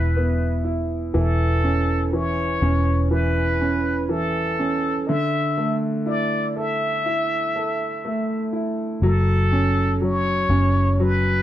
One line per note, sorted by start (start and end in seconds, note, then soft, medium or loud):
0.00 1.11 E1 medium
0.00 1.11 E3 medium
0.00 0.15 B3 medium
0.00 0.64 E4 medium
0.00 0.67 B4 medium
0.17 1.12 B3 medium
0.64 1.13 E4 medium
1.14 2.58 E1 loud
1.14 2.12 E3 medium
1.14 2.15 A4 loud
1.64 2.61 C#4 medium
2.13 3.09 E3 medium
2.13 3.10 C#5 loud
2.62 5.04 E1 loud
2.62 3.60 C#4 medium
3.11 4.08 E3 medium
3.11 4.11 B4 loud
3.61 4.58 C#4 medium
4.09 5.05 E3 medium
4.09 5.09 A4 medium
4.59 5.07 C#4 medium
5.08 8.98 D3 medium
5.08 5.80 E5 loud
5.57 7.50 A3 medium
6.06 7.04 E4 medium
6.06 6.58 D5 loud
6.56 7.54 A4 medium
6.56 8.53 E5 loud
7.06 8.51 E4 medium
7.56 8.99 A4 medium
8.05 9.00 A3 medium
8.53 9.00 E4 soft
9.02 10.45 F#1 loud
9.02 10.00 F#3 medium
9.02 10.05 A4 loud
9.52 10.49 C#4 medium
10.01 10.98 F#3 medium
10.01 11.04 C#5 loud
10.49 11.42 F#1 loud
10.49 11.42 C#4 medium
11.00 11.42 F#3 medium
11.00 11.42 B4 loud